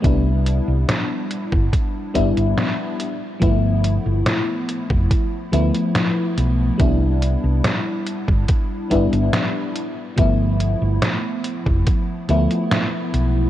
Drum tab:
HH |x-x-x-x-x-xxx-x-|x-x-x-x-x-xxx-x-|x-x-x-x-x-xxx-x-|x-x-x-x-x-xxx-x-|
SD |----o-------o---|----o-------o---|----o-------o---|----o-------o---|
BD |o------oo-o-----|o------oo-------|o------oo-o-----|o------oo-------|